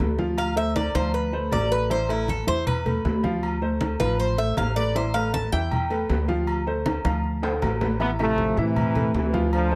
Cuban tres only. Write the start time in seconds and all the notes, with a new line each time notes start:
0.38 F5
0.57 E5
0.76 D5
0.95 C5
1.14 B4
1.53 D5
1.72 B4
1.91 C5
2.10 E4
2.29 A4
2.48 C5
2.67 B4
4.00 B4
4.20 C5
4.38 E5
4.58 F5
4.76 D5
4.96 C5
5.14 F5
5.34 A5
5.52 G5